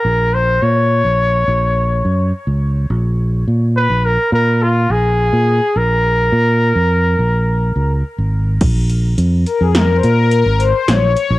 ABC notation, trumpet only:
X:1
M:5/4
L:1/8
Q:1/4=105
K:Bbm
V:1 name="Trumpet"
B c d6 z2 | z3 _c B B F A3 | B8 z2 | z8 z2 |]